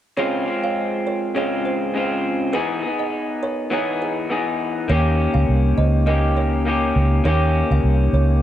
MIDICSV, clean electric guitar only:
0, 0, Header, 1, 2, 480
1, 0, Start_track
1, 0, Tempo, 589971
1, 146, Time_signature, 4, 2, 24, 8
1, 6852, End_track
2, 0, Start_track
2, 0, Title_t, "Clean electric guitar"
2, 0, Program_c, 0, 27
2, 141, Note_on_c, 0, 49, 72
2, 148, Note_on_c, 0, 56, 70
2, 153, Note_on_c, 0, 60, 78
2, 158, Note_on_c, 0, 65, 77
2, 365, Note_off_c, 0, 65, 0
2, 374, Note_on_c, 0, 65, 42
2, 378, Note_off_c, 0, 60, 0
2, 383, Note_off_c, 0, 49, 0
2, 387, Note_off_c, 0, 56, 0
2, 388, Note_on_c, 0, 60, 40
2, 398, Note_on_c, 0, 56, 37
2, 1098, Note_on_c, 0, 49, 58
2, 1100, Note_off_c, 0, 65, 0
2, 1104, Note_off_c, 0, 56, 0
2, 1105, Note_off_c, 0, 60, 0
2, 1107, Note_on_c, 0, 56, 59
2, 1114, Note_on_c, 0, 60, 56
2, 1120, Note_on_c, 0, 65, 61
2, 1567, Note_off_c, 0, 49, 0
2, 1577, Note_on_c, 0, 49, 53
2, 1581, Note_off_c, 0, 56, 0
2, 1583, Note_off_c, 0, 60, 0
2, 1585, Note_on_c, 0, 56, 54
2, 1591, Note_off_c, 0, 65, 0
2, 1593, Note_on_c, 0, 60, 61
2, 1601, Note_on_c, 0, 65, 61
2, 2056, Note_on_c, 0, 52, 74
2, 2060, Note_off_c, 0, 56, 0
2, 2061, Note_off_c, 0, 49, 0
2, 2063, Note_on_c, 0, 59, 71
2, 2065, Note_off_c, 0, 60, 0
2, 2069, Note_on_c, 0, 63, 73
2, 2070, Note_off_c, 0, 65, 0
2, 2073, Note_on_c, 0, 68, 72
2, 2291, Note_off_c, 0, 68, 0
2, 2301, Note_off_c, 0, 52, 0
2, 2301, Note_on_c, 0, 68, 42
2, 2304, Note_off_c, 0, 59, 0
2, 2305, Note_off_c, 0, 63, 0
2, 2315, Note_on_c, 0, 63, 40
2, 2324, Note_on_c, 0, 59, 38
2, 3011, Note_off_c, 0, 59, 0
2, 3013, Note_on_c, 0, 52, 59
2, 3021, Note_on_c, 0, 59, 64
2, 3023, Note_off_c, 0, 68, 0
2, 3025, Note_off_c, 0, 63, 0
2, 3028, Note_on_c, 0, 63, 66
2, 3037, Note_on_c, 0, 68, 63
2, 3483, Note_off_c, 0, 52, 0
2, 3490, Note_off_c, 0, 59, 0
2, 3493, Note_on_c, 0, 52, 52
2, 3499, Note_on_c, 0, 59, 53
2, 3503, Note_off_c, 0, 68, 0
2, 3505, Note_off_c, 0, 63, 0
2, 3508, Note_on_c, 0, 63, 51
2, 3512, Note_on_c, 0, 68, 61
2, 3968, Note_off_c, 0, 52, 0
2, 3971, Note_on_c, 0, 51, 72
2, 3981, Note_off_c, 0, 59, 0
2, 3984, Note_on_c, 0, 58, 75
2, 3989, Note_off_c, 0, 68, 0
2, 3992, Note_off_c, 0, 63, 0
2, 3995, Note_on_c, 0, 61, 80
2, 4003, Note_on_c, 0, 67, 79
2, 4923, Note_off_c, 0, 51, 0
2, 4933, Note_on_c, 0, 51, 65
2, 4935, Note_off_c, 0, 58, 0
2, 4945, Note_on_c, 0, 58, 62
2, 4947, Note_off_c, 0, 61, 0
2, 4947, Note_off_c, 0, 67, 0
2, 4950, Note_on_c, 0, 61, 61
2, 4957, Note_on_c, 0, 67, 64
2, 5403, Note_off_c, 0, 51, 0
2, 5413, Note_off_c, 0, 58, 0
2, 5413, Note_on_c, 0, 51, 57
2, 5422, Note_on_c, 0, 58, 54
2, 5427, Note_off_c, 0, 67, 0
2, 5428, Note_off_c, 0, 61, 0
2, 5431, Note_on_c, 0, 61, 57
2, 5437, Note_on_c, 0, 67, 68
2, 5880, Note_off_c, 0, 51, 0
2, 5890, Note_on_c, 0, 51, 67
2, 5895, Note_off_c, 0, 58, 0
2, 5904, Note_on_c, 0, 58, 71
2, 5910, Note_off_c, 0, 67, 0
2, 5913, Note_off_c, 0, 61, 0
2, 5916, Note_on_c, 0, 61, 80
2, 5924, Note_on_c, 0, 67, 88
2, 6843, Note_off_c, 0, 51, 0
2, 6849, Note_off_c, 0, 58, 0
2, 6852, Note_off_c, 0, 61, 0
2, 6852, Note_off_c, 0, 67, 0
2, 6852, End_track
0, 0, End_of_file